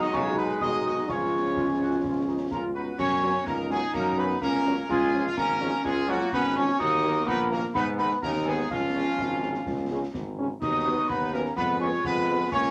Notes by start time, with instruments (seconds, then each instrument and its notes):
Already playing: french horn section F#3 G#3 D#4, trombone section G#3
0.01 euphonium D#3, woodwind section F#4, trumpet section D#5, piccolo D#6
0.13 tuba B1, euphonium C#3, woodwind section F4, trumpet section C#5, piccolo C#6, concert bass drum, snare
0.36 euphonium B2, woodwind section D#4, trumpet section B4, piccolo B5, snare
0.49 snare
0.61 tuba B1, euphonium D#3, french horn section F#3 G#3 D#4, woodwind section F#4, trumpet section D#5, piccolo D#6, concert bass drum, snare
0.85 euphonium D#3, woodwind section F#4, trumpet section D#5, piccolo D#6
1.08 tuba C#2, euphonium C#3, french horn section F3 G#3 C#4, woodwind section F4, trombone section F4, trumpet section C#5, piccolo C#6, concert bass drum, snare, crash
1.55 tuba C#2, trombone section F4, concert bass drum, snare
1.80 trombone section F#4
2.04 tuba C#2, trombone section F4, concert bass drum, snare
2.27 trombone section D#4
2.51 tuba C#2, euphonium A#3, woodwind section C#4, trombone section F4, trumpet section A#4, piccolo A#5, concert bass drum, snare
2.74 euphonium B3, woodwind section D#4, trombone section F#4, trumpet section B4, piccolo B5
2.98 tuba F#2, euphonium C#4, woodwind section F#4, trumpet section C#5, piccolo C#6, concert bass drum, snare, crash
3.23 french horn section F#3 A#3 C#4
3.45 tuba C#2, euphonium A#3, woodwind section C#4, trombone section D#4, trumpet section A#4, piccolo A#5, concert bass drum, snare
3.70 french horn section F#3 A#3 C#4, euphonium G#3, woodwind section B3, trumpet section G#4, piccolo G#5, snare
3.82 snare
3.93 tuba F#2, euphonium A#3, woodwind section C#4, trumpet section A#4, piccolo A#5, concert bass drum, snare
4.17 french horn section F#3 A#3 C#4, euphonium B3, woodwind section D#4, trumpet section B4, piccolo B5
4.30 snare
4.41 tuba C#2, euphonium A#3, trombone section C#4, woodwind section C#4, trumpet section A#4, piccolo A#5, concert bass drum, snare
4.65 french horn section F#3 A#3 C#4
4.89 tuba C#2, euphonium G#3, woodwind section C#4, trombone section F4, trumpet section G#4, piccolo G#5, concert bass drum, snare, crash
5.13 french horn section F3 G#3 C#4
5.24 euphonium F3, woodwind section G#3, trumpet section F4, piccolo F5
5.37 tuba G#1, euphonium A#3, woodwind section C#4, trombone section C#4, trumpet section A#4, piccolo A#5, concert bass drum, snare
5.60 french horn section F3 G#3 C#4, snare
5.73 snare
5.83 tuba C#2, euphonium G#3, woodwind section C#4, trombone section F4, trumpet section G#4, piccolo G#5, concert bass drum, snare
6.08 french horn section F3 G#3 C#4, euphonium F#3, woodwind section A#3, trumpet section F#4, piccolo F#5
6.20 snare
6.31 tuba G#1, euphonium B3, trombone section C#4, woodwind section D#4, trumpet section B4, piccolo B5, concert bass drum, snare
6.56 french horn section F3 G#3 C#4, euphonium C#4, woodwind section F4, trumpet section C#5, piccolo C#6
6.79 tuba D#2, trombone section A#3, euphonium D#4, woodwind section F#4, trumpet section D#5, piccolo D#6, concert bass drum, snare, crash
7.03 french horn section D#3 F#3 A#3
7.26 tuba A#1, euphonium B3, woodwind section D#4, trumpet section B4, piccolo B5, concert bass drum, snare
7.50 french horn section D#3 F#3 A#3, euphonium A#3, woodwind section C#4, trumpet section A#4, piccolo A#5, snare
7.63 snare
7.74 tuba G#2, euphonium B3, trombone section B3, woodwind section D#4, trumpet section B4, piccolo B5, concert bass drum, snare
7.98 french horn section D#3 G#3 B3, euphonium B3, woodwind section D#4, trumpet section B4, piccolo B5
8.11 snare
8.21 tuba D#2, euphonium A#3, woodwind section C#4, trombone section D#4, trumpet section A#4, piccolo A#5, concert bass drum, snare
8.45 french horn section D#3 G#3 B3, euphonium G#3, woodwind section B3, trumpet section G#4, piccolo G#5
8.69 tuba C#2, euphonium F3, woodwind section G#3, trombone section C#4, trumpet section F4, piccolo F5, concert bass drum, snare, crash
8.95 french horn section C#3 G#3 C#4
9.18 tuba G#1, concert bass drum, snare
9.42 french horn section C#3 G#3 C#4, snare
9.54 snare
9.66 tuba C#2, concert bass drum, snare
9.91 french horn section C#3 G#3 C#4
10.14 tuba G#1, concert bass drum, snare
10.38 french horn section C#3 G#3 C#4
10.61 tuba D#2, trombone section B3, euphonium D#4, woodwind section F#4, trumpet section D#5, piccolo D#6, concert bass drum, snare, crash
10.86 french horn section F#3 B3
11.08 tuba D#2, euphonium B3, woodwind section D#4, trumpet section B4, piccolo B5, concert bass drum, snare
11.32 french horn section F#3 B3, euphonium A#3, woodwind section C#4, trumpet section A#4, piccolo A#5, snare
11.45 snare
11.55 tuba F2, trombone section G#3, euphonium B3, woodwind section F4, trumpet section B4, piccolo B5, concert bass drum, snare
11.79 french horn section F3 G#3 B3, euphonium C#4, woodwind section F4, trumpet section C#5, piccolo C#6
11.93 snare
12.04 tuba F2, trombone section G#3, euphonium B3, woodwind section F4, trumpet section B4, piccolo B5, concert bass drum, snare
12.28 french horn section F3 G#3 B3
12.51 tuba C#2, trombone section A#3, euphonium C#4, woodwind section F4, trumpet section C#5, piccolo C#6, concert bass drum, snare, crash